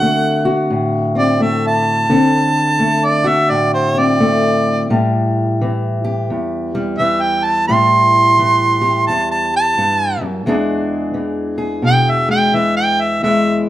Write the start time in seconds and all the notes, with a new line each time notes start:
Already playing: D3 C4 F#4 F#5
0.02 A3
0.45 F#4
0.70 A2
1.15 C4 D5
1.40 A3 E5
1.67 A5
2.10 D3 C4
2.79 A3
3.05 D5
3.24 F#4 E5
3.50 A2 D5
3.74 C5
3.95 C4 D5
4.20 A3
4.90 A2 G3
5.61 E3
6.04 G4
6.30 E2
6.75 G3
6.98 E3 E5
7.22 G5
7.44 A5
7.68 A2 G3 C6
8.39 E3
8.81 G4
9.07 E2 A5
9.31 A5
9.56 A5
9.78 G2
10.21 F#2
10.46 E2 E3 G#3 D4 G#4
11.14 E3
11.58 G#4
11.82 B2
11.86 G5
12.10 E5
12.29 G#3 G5
12.54 E3 E5
12.77 G5
13.01 E5
13.23 E2 G#3 E5